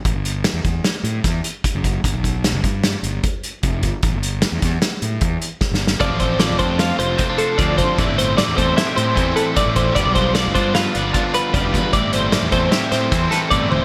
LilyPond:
<<
  \new Staff \with { instrumentName = "Clean electric guitar" } { \time 5/4 \key a \minor \tempo 4 = 152 r1 r4 | r1 r4 | r1 r4 | d''8 c''8 d''8 c''8 f''8 c''4 a'8 d''8 c''8 |
d''8 c''8 d''8 c''8 e''8 c''4 a'8 d''8 c''8 | d''8 c''8 d''8 c''8 f''8 d''4 b'8 d''8 b'8 | d''8 c''8 d''8 c''8 e''8 c''4 a'8 d''8 c''8 | }
  \new Staff \with { instrumentName = "Clean electric guitar" } { \time 5/4 \key a \minor << { r1 r4 | r1 r4 | r1 r4 | r4. d'8 f'4 c'16 d'16 c''4. |
r4. c'8 e'16 g'8. c'8 b'4. | r4. f'8 b'4 f'8 b'4. | r4. c'8 g'4 c'8 b'4. | } \\ { r1 r4 | r1 r4 | r1 r4 | f4. a4. c4 f4 |
a,4. a4. e4 a,4 | g4. d'4. d4 g4 | a,4. a4. e4 a,4 | } >> }
  \new Staff \with { instrumentName = "Overdriven electric guitar" } { \time 5/4 \key a \minor r1 r4 | r1 r4 | r1 r4 | <f a c' f'>8 <a c' f'>8 <f a c' f'>8 <a c' f'>4 <a c' f'>8 <f a c' f'>4 <f a c' f'>8 <a c' f'>8 |
<a, e a c' e'>8 <a c' e'>8 <e a c' e'>8 <a c' e'>4 <a c' e'>8 <a, e a c' e'>4 <a, e a c' e'>8 <a c' e'>8 | <g, d f b f'>8 <f b f'>8 <d f b f'>8 <f b f'>4 <f b f'>8 <g, d f b f'>4 <g, d f b f'>8 <f b f'>8 | <a, e a c' e'>8 <a c' e'>8 <e a c' e'>8 <a c' e'>4 <a c' e'>8 <a, e a c' e'>4 <a, e a c' e'>8 <a c' e'>8 | }
  \new Staff \with { instrumentName = "Fingered electric bass" } { \clef bass \time 5/4 \key a \minor a,,16 g,,4 e,16 e,8 r8 a,8 e,8 r8. fis,,8. | g,,16 b,,4 g,,16 g,4 g,,8 r4 f,,8 g,,16 r16 | a,,16 g,,4 e,16 e,8 r8 a,8 e,8 r8. g,,8. | f,,16 a,,4 f,,16 f,4 f,,8 r4 d,8 g,,16 r16 |
a,,16 g,,4 e,16 e,8 r8 a,8 e,8 r8. a,,8. | g,,16 b,,4 g,,16 g,4 g,,8 r4 f,,8 e,16 r16 | a,,16 g,,4 e,16 e,8 r8 a,8 e,8 r8 g,,8 e,,8 | }
  \new DrumStaff \with { instrumentName = "Drums" } \drummode { \time 5/4 <hh bd>8 hh8 <hh sn>8 <hh bd>8 <hh sn>8 hh8 <hh bd sn>8 hh8 <hh bd>8 <hh bd>8 | <hh bd>8 <hh bd>8 <hh sn>8 <hh bd>8 <hh sn>8 hh8 <hh bd>8 hh8 <hh bd>8 <hh bd>8 | <hh bd>8 hh8 <hh sn>8 <hh bd sn>8 <hh sn>8 hh8 <hh bd>8 hh8 \tuplet 3/2 { <bd sn>8 sn8 sn8 } | <hh bd>8 <hh bd>8 <hh sn>8 <hh bd>8 <hh sn>8 hh8 <hh bd>8 hh8 <hh bd>8 <hh bd>8 |
<hh bd>8 hh8 <hh sn>8 <hh bd>8 <hh sn>8 hh8 <hh bd>8 hh8 <hh bd>8 <hh bd>8 | <hh bd>8 <hh bd>8 <hh sn>8 <hh bd>8 <hh sn>8 hh8 <hh bd>8 hh8 <hh bd>8 <hh bd>8 | <hh bd>8 hh8 <hh sn>8 <hh bd>8 <hh sn>8 <hh sn>8 <hh bd sn>8 <hh sn>8 <hh bd>8 tommh8 | }
>>